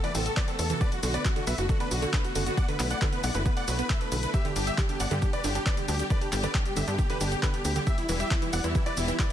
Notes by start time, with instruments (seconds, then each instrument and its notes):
0.04 synth pluck E3, supersaw synth B4 D5, grand piano D5, closed hi-hat, shaker
0.15 analog synth bass A1, string section C3 A3 B3 F#4, synth pluck C4, grand piano A4, supersaw synth A4, open hi-hat, shaker
0.26 grand piano A4, supersaw synth A4, closed hi-hat, shaker
0.37 string section C3 A3 B3 F#4, synth pluck E3, supersaw synth B4 D5, grand piano D5, kick, clap, closed hi-hat, shaker
0.48 string section C3 A3 B3 F#4, synth pluck C4, grand piano A4, supersaw synth A4, closed hi-hat, shaker
0.59 analog synth bass E2, grand piano A4, supersaw synth A4, open hi-hat, shaker
0.70 string section C3 A3 B3 F#4, synth pluck E3, supersaw synth A4, grand piano A4, closed hi-hat, shaker
0.81 string section D3 A3 B3 F#4, synth pluck B3, supersaw synth B4 D5, grand piano D5, kick, closed hi-hat, shaker
0.92 grand piano F#4, supersaw synth F#4, closed hi-hat, shaker
1.03 analog synth bass B1, string section D3 A3 B3 F#4, synth pluck D3, supersaw synth F#4, grand piano F#4, open hi-hat, shaker
1.14 synth pluck B3, supersaw synth B4 D5, grand piano D5, closed hi-hat, shaker
1.25 string section D3 A3 B3 F#4, supersaw synth F#4, grand piano F#4, kick, clap, closed hi-hat, shaker
1.36 synth pluck D3, string section D3 A3 B3 F#4, grand piano F#4, supersaw synth F#4, closed hi-hat, shaker
1.47 analog synth bass B1, synth pluck B3, supersaw synth B4 E5, grand piano E5, open hi-hat, shaker
1.58 analog synth bass F#1, string section D3 A3 B3 F#4, supersaw synth F#4, grand piano F#4, closed hi-hat, shaker
1.69 synth pluck D3, string section D3 A3 B3 F#4, supersaw synth F#4, grand piano F#4, kick, closed hi-hat, shaker
1.80 synth pluck B3, supersaw synth D4 B4, grand piano B4, closed hi-hat, shaker
1.91 analog synth bass B1, string section D3 A3 B3 F#4, supersaw synth F#4, grand piano F#4, open hi-hat, shaker
2.02 synth pluck D3, grand piano F#4, supersaw synth F#4, closed hi-hat, shaker
2.13 string section D3 A3 B3 F#4, supersaw synth D4 B4, grand piano B4, kick, clap, closed hi-hat, shaker
2.24 string section D3 A3 B3 F#4, supersaw synth F#4, grand piano F#4, closed hi-hat, shaker
2.35 analog synth bass F#1, synth pluck D3, supersaw synth F#4, grand piano F#4, open hi-hat, shaker
2.46 string section D3 A3 B3 F#4, synth pluck B3, supersaw synth F#4, grand piano F#4, closed hi-hat, shaker
2.57 string section D3 A3 B3 E4, supersaw synth D5 F#5, grand piano F#5, kick, closed hi-hat, shaker
2.68 synth pluck D3, supersaw synth B4, grand piano B4, closed hi-hat, shaker
2.79 analog synth bass B1, string section D3 A3 B3 E4, synth pluck B3, supersaw synth B4, grand piano B4, clap, open hi-hat, shaker
2.90 supersaw synth D5 F#5, grand piano F#5, closed hi-hat, shaker
3.01 synth pluck D3, string section D3 A3 B3 E4, supersaw synth B4, grand piano B4, kick, clap, closed hi-hat, shaker
3.12 string section D3 A3 B3 E4, synth pluck B3, supersaw synth B4, grand piano B4, closed hi-hat, shaker
3.24 analog synth bass B1, supersaw synth D5 F#5, grand piano F#5, open hi-hat, shaker
3.34 analog synth bass F#1, synth pluck D3, string section D3 A3 B3 E4, supersaw synth B4, grand piano B4, closed hi-hat, shaker
3.46 string section D3 A3 B3 E4, synth pluck B3, supersaw synth B4, kick, closed hi-hat, shaker
3.57 supersaw synth D5 F#5, grand piano F#5, closed hi-hat, shaker
3.68 analog synth bass B1, string section D3 A3 B3 E4, synth pluck F#4, supersaw synth B4, grand piano B4, open hi-hat, shaker
3.79 synth pluck B3, supersaw synth B4, grand piano B4, closed hi-hat, shaker
3.90 string section D3 A3 B3 E4, supersaw synth B4 E5, grand piano E5, kick, clap, closed hi-hat, shaker
4.01 string section D3 A3 B3 E4, synth pluck D4, grand piano B4, supersaw synth B4, closed hi-hat, shaker
4.12 analog synth bass B1, synth pluck D3, grand piano B4, supersaw synth B4, open hi-hat, shaker
4.23 string section D3 A3 B3 E4, grand piano B4, supersaw synth B4, closed hi-hat, shaker
4.34 string section D3 G3 B3 G4, supersaw synth G4 E5, grand piano E5, kick, closed hi-hat, shaker
4.45 synth pluck D3, grand piano G4, supersaw synth G4, closed hi-hat, shaker
4.56 analog synth bass G1, string section D3 G3 B3 G4, synth pluck D4, grand piano G4, supersaw synth G4, open hi-hat, shaker
4.67 supersaw synth G4 E5, grand piano E5, closed hi-hat, shaker
4.78 synth pluck D3, string section D3 G3 B3 G4, supersaw synth G4, grand piano G4, kick, clap, closed hi-hat, shaker
4.89 string section D3 G3 B3 G4, synth pluck D4, supersaw synth G4, grand piano G4, closed hi-hat, shaker
5.00 analog synth bass G1, supersaw synth D5 F#5, grand piano F#5, open hi-hat, shaker
5.11 analog synth bass G2, synth pluck D3, string section D3 G3 B3 G4, supersaw synth G4, grand piano G4, closed hi-hat, shaker
5.22 string section D3 G3 B3 G4, synth pluck D4, supersaw synth G4, grand piano G4, kick, closed hi-hat, shaker
5.33 supersaw synth B4 D5, grand piano D5, closed hi-hat, shaker
5.44 analog synth bass G1, synth pluck D3, string section D3 G3 B3 G4, supersaw synth G4, grand piano G4, open hi-hat, shaker
5.55 synth pluck D4, supersaw synth G4, grand piano G4, closed hi-hat, shaker
5.66 string section D3 G3 B3 G4, supersaw synth B4 D5, grand piano D5, kick, clap, closed hi-hat, shaker
5.77 synth pluck D3, string section D3 G3 B3 G4, grand piano G4, supersaw synth G4, closed hi-hat, shaker
5.88 analog synth bass D2, synth pluck D4, supersaw synth G4, grand piano G4, open hi-hat, shaker
5.99 string section D3 G3 B3 G4, supersaw synth G4, grand piano G4, closed hi-hat, shaker
6.10 synth pluck D3, string section D3 G3 B3 G4, supersaw synth B4 D5, grand piano D5, kick, closed hi-hat, shaker
6.21 synth pluck D4, grand piano G4, supersaw synth G4, closed hi-hat, shaker
6.32 analog synth bass G1, string section D3 G3 B3 G4, supersaw synth G4, grand piano G4, clap, open hi-hat, shaker
6.43 synth pluck D3, supersaw synth B4 D5, grand piano D5, closed hi-hat, shaker
6.54 string section D3 G3 B3 G4, synth pluck D4, grand piano G4, supersaw synth G4, kick, clap, closed hi-hat, shaker
6.66 string section D3 G3 B3 G4, grand piano G4, supersaw synth G4, closed hi-hat, shaker
6.76 analog synth bass G1, synth pluck D3, supersaw synth G4 E5, grand piano E5, open hi-hat, shaker
6.88 analog synth bass G2, string section D3 G3 B3 G4, synth pluck D4, grand piano G4, supersaw synth G4, closed hi-hat, shaker
6.99 string section D3 G3 B3 G4, supersaw synth G4, grand piano G4, kick, closed hi-hat, shaker
7.09 synth pluck D3, supersaw synth G4 B4, grand piano B4, closed hi-hat, shaker
7.20 analog synth bass G1, string section D3 G3 B3 G4, synth pluck D4, supersaw synth G4, grand piano G4, open hi-hat, shaker
7.32 grand piano G4, supersaw synth G4, closed hi-hat, shaker
7.43 synth pluck D3, string section D3 G3 B3 G4, supersaw synth G4 B4, grand piano B4, kick, clap, closed hi-hat, shaker
7.53 string section D3 G3 B3 G4, synth pluck D4, supersaw synth G4, grand piano G4, closed hi-hat, shaker
7.65 analog synth bass D2, supersaw synth G4, grand piano G4, open hi-hat, shaker
7.76 synth pluck D3, string section D3 G3 B3 G4, supersaw synth G4, grand piano G4, closed hi-hat, shaker
7.87 string section E3 G3 B3 G4, synth pluck E4, supersaw synth G4 E5, grand piano E5, kick, closed hi-hat, shaker
7.98 supersaw synth E4, grand piano E4, closed hi-hat, shaker
8.09 analog synth bass E1, synth pluck E3, string section E3 G3 B3 G4, supersaw synth E4, grand piano E4, open hi-hat, shaker
8.20 synth pluck E4, supersaw synth G4 E5, grand piano E5, closed hi-hat, shaker
8.31 string section E3 G3 B3 G4, grand piano E4, supersaw synth E4, kick, clap, closed hi-hat, shaker
8.42 string section E3 G3 B3 G4, synth pluck E3, grand piano E4, supersaw synth E4, closed hi-hat, shaker
8.53 analog synth bass E1, synth pluck E4, supersaw synth D5 F#5, grand piano F#5, open hi-hat, shaker
8.64 analog synth bass E2, string section E3 G3 B3 G4, grand piano E4, supersaw synth E4, closed hi-hat, shaker
8.75 synth pluck E3, string section E3 G3 B3 G4, grand piano E4, supersaw synth E4, kick, closed hi-hat, shaker
8.86 synth pluck E4, supersaw synth B4 D5, grand piano D5, closed hi-hat, shaker
8.97 analog synth bass E1, string section E3 G3 B3 G4, grand piano E4, supersaw synth E4, open hi-hat, shaker
9.08 synth pluck E3, grand piano E4, supersaw synth E4, closed hi-hat, shaker
9.19 string section E3 G3 B3 G4, synth pluck E4, supersaw synth B4 D5, grand piano D5, kick, clap, closed hi-hat, shaker